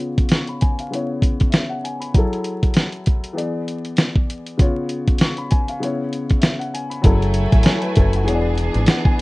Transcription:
0.00 0.89 C#3 medium
0.00 0.89 B3 medium
0.00 0.90 F4 medium
0.00 0.91 C#5 medium
0.18 kick medium
0.18 closed hi-hat soft
0.29 0.48 C#6 medium
0.29 snare loud
0.29 closed hi-hat medium
0.47 0.61 B5 medium
0.47 closed hi-hat soft
0.61 0.78 G#5 medium
0.61 kick medium
0.61 closed hi-hat medium
0.79 1.08 F5 medium
0.79 closed hi-hat medium
0.90 2.11 C#3 medium
0.90 2.12 B3 medium
0.90 2.12 E4 medium
0.90 closed hi-hat medium
0.94 2.13 C#5 medium
1.22 kick medium
1.22 closed hi-hat medium
1.40 kick medium
1.40 closed hi-hat soft
1.50 1.68 E5 medium
1.50 snare loud
1.50 closed hi-hat medium
1.69 1.82 F#5 medium
1.84 2.00 G#5 medium
1.84 closed hi-hat medium
2.00 2.30 B5 medium
2.00 closed hi-hat medium
2.14 3.34 F#3 medium
2.14 3.35 E4 medium
2.14 3.34 G#4 medium
2.14 kick loud
2.14 closed hi-hat medium
2.19 3.37 A4 medium
2.33 closed hi-hat soft
2.44 closed hi-hat medium
2.63 kick medium
2.63 closed hi-hat soft
2.74 snare loud
2.74 closed hi-hat medium
2.92 closed hi-hat soft
3.06 kick medium
3.06 closed hi-hat medium
3.24 closed hi-hat medium
3.33 4.55 E3 medium
3.33 4.56 B3 medium
3.33 4.56 G#4 medium
3.37 4.57 D5 medium
3.37 closed hi-hat medium
3.68 closed hi-hat medium
3.85 closed hi-hat soft
3.97 snare loud
3.97 closed hi-hat medium
4.16 kick medium
4.30 closed hi-hat medium
4.46 closed hi-hat medium
4.57 5.78 C#3 medium
4.57 5.79 B3 medium
4.57 5.80 F4 medium
4.57 kick loud
4.57 closed hi-hat medium
4.62 5.81 C#5 medium
4.89 closed hi-hat medium
5.08 kick medium
5.08 closed hi-hat soft
5.18 5.37 C#6 medium
5.18 snare loud
5.18 closed hi-hat medium
5.37 5.51 B5 medium
5.37 closed hi-hat soft
5.51 5.67 G#5 medium
5.51 kick medium
5.51 closed hi-hat medium
5.68 5.98 F5 medium
5.68 closed hi-hat medium
5.80 7.01 C#3 medium
5.80 7.02 B3 medium
5.80 7.02 E4 medium
5.80 closed hi-hat medium
5.84 7.03 C#5 medium
6.13 closed hi-hat medium
6.30 kick medium
6.30 closed hi-hat soft
6.40 6.58 E5 medium
6.40 snare loud
6.40 closed hi-hat medium
6.59 6.72 F#5 medium
6.59 closed hi-hat soft
6.74 6.90 G#5 medium
6.74 closed hi-hat medium
6.90 7.20 B5 medium
6.90 closed hi-hat medium
7.02 7.46 F#1 loud
7.02 8.23 F#3 medium
7.02 8.26 F#3 medium
7.02 8.26 A3 medium
7.02 8.24 E4 medium
7.02 8.26 E4 medium
7.02 7.64 G#4 medium
7.02 8.26 G#5 medium
7.02 kick loud
7.02 closed hi-hat loud
7.06 7.65 A4 medium
7.22 closed hi-hat soft
7.34 closed hi-hat medium
7.52 7.64 A1 medium
7.52 kick medium
7.52 closed hi-hat medium
7.63 7.82 C#5 medium
7.63 snare loud
7.63 closed hi-hat loud
7.82 7.95 B4 medium
7.82 closed hi-hat soft
7.96 8.28 F#1 medium
7.96 8.13 A4 medium
7.96 kick medium
7.96 closed hi-hat medium
8.13 8.44 F#4 medium
8.13 closed hi-hat medium
8.24 8.68 E1 loud
8.24 9.21 E3 medium
8.24 9.21 B3 medium
8.24 9.21 D4 medium
8.24 9.21 G#4 medium
8.28 8.35 C#5 medium
8.28 closed hi-hat medium
8.34 9.21 D5 medium
8.58 closed hi-hat medium
8.74 8.86 G#1 medium
8.74 closed hi-hat soft
8.86 9.05 F#5 medium
8.86 snare loud
8.86 closed hi-hat loud
9.05 9.21 G#5 medium
9.05 kick medium

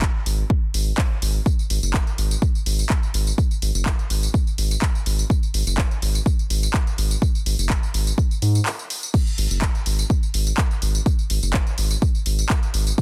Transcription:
0.02 kick loud
0.02 clap loud
0.26 0.44 G#1 medium
0.26 open hi-hat loud
0.50 kick loud
0.74 0.92 G#1 medium
0.74 open hi-hat loud
0.98 kick loud
0.98 clap loud
0.98 open hi-hat medium
1.22 1.40 G#1 medium
1.22 open hi-hat loud
1.46 kick loud
1.46 tambourine medium
1.59 tambourine soft
1.70 1.79 G#1 loud
1.70 open hi-hat loud
1.82 2.00 F#1 medium
1.82 tambourine medium
1.94 kick loud
1.94 clap loud
1.94 tambourine medium
2.07 tambourine soft
2.18 2.36 G#1 loud
2.18 open hi-hat loud
2.31 tambourine medium
2.42 kick loud
2.42 tambourine medium
2.55 tambourine soft
2.66 2.84 G#1 medium
2.66 open hi-hat loud
2.79 tambourine medium
2.90 kick loud
2.90 clap loud
2.90 tambourine soft
3.03 tambourine soft
3.14 3.32 G#1 loud
3.14 open hi-hat loud
3.27 tambourine medium
3.38 kick loud
3.38 tambourine medium
3.51 tambourine soft
3.62 3.71 G#1 loud
3.62 open hi-hat loud
3.74 3.92 F#1 loud
3.74 tambourine medium
3.86 kick loud
3.86 clap loud
3.86 tambourine medium
3.99 tambourine soft
4.10 4.28 G#1 medium
4.10 open hi-hat loud
4.23 tambourine medium
4.34 kick loud
4.34 tambourine medium
4.47 tambourine soft
4.58 4.76 G#1 medium
4.58 open hi-hat loud
4.71 tambourine medium
4.82 kick loud
4.82 clap loud
4.82 tambourine medium
4.95 tambourine soft
5.06 5.24 G#1 loud
5.06 open hi-hat loud
5.19 tambourine medium
5.30 kick loud
5.30 tambourine medium
5.43 tambourine soft
5.54 5.63 G#1 loud
5.54 open hi-hat loud
5.66 5.84 F#1 loud
5.66 tambourine medium
5.78 kick loud
5.78 clap loud
5.78 tambourine medium
5.91 tambourine soft
6.02 6.20 G#1 medium
6.02 open hi-hat loud
6.15 tambourine medium
6.26 kick loud
6.26 tambourine medium
6.39 tambourine soft
6.50 6.68 G#1 medium
6.50 open hi-hat loud
6.63 tambourine medium
6.74 kick loud
6.74 clap loud
6.74 tambourine medium
6.87 tambourine soft
6.98 7.16 G#1 loud
6.98 open hi-hat loud
7.11 tambourine medium
7.22 kick loud
7.22 tambourine medium
7.35 tambourine soft
7.46 7.55 G#1 loud
7.46 open hi-hat loud
7.58 7.76 F#1 loud
7.58 tambourine medium
7.70 kick loud
7.70 clap loud
7.70 tambourine medium
7.83 tambourine soft
7.94 8.12 G#1 loud
7.94 open hi-hat loud
8.07 tambourine medium
8.18 kick loud
8.18 tambourine medium
8.31 tambourine soft
8.42 8.60 G#2 loud
8.42 open hi-hat loud
8.55 tambourine medium
8.66 clap loud
8.66 open hi-hat medium
8.66 tambourine medium
8.79 tambourine soft
8.90 open hi-hat loud
9.03 tambourine medium
9.14 kick loud
9.14 crash medium
9.14 tambourine medium
9.27 tambourine soft
9.38 9.47 G#1 loud
9.38 open hi-hat loud
9.50 9.68 F#1 loud
9.50 tambourine medium
9.62 kick loud
9.62 clap loud
9.62 tambourine medium
9.75 tambourine soft
9.86 10.04 G#1 loud
9.86 open hi-hat loud
9.99 tambourine medium
10.10 kick loud
10.10 tambourine medium
10.23 tambourine soft
10.34 10.52 G#1 loud
10.34 open hi-hat loud
10.47 tambourine medium
10.58 kick loud
10.58 clap loud
10.58 tambourine medium
10.71 tambourine soft
10.82 11.00 G#1 loud
10.82 open hi-hat loud
10.95 tambourine medium
11.06 kick loud
11.06 tambourine medium
11.19 tambourine soft
11.30 11.39 G#1 loud
11.30 open hi-hat loud
11.42 11.60 F#1 loud
11.42 tambourine medium
11.54 kick loud
11.54 clap loud
11.54 tambourine medium
11.67 tambourine soft
11.78 11.96 G#1 loud
11.78 open hi-hat loud
11.91 tambourine medium
12.02 kick loud
12.02 tambourine medium
12.15 tambourine soft
12.26 12.44 G#1 medium
12.26 open hi-hat loud
12.39 tambourine medium
12.49 kick loud
12.49 clap loud
12.49 tambourine medium
12.63 tambourine soft
12.74 12.92 G#1 loud
12.74 open hi-hat loud
12.87 tambourine medium
12.98 kick loud
12.98 tambourine medium

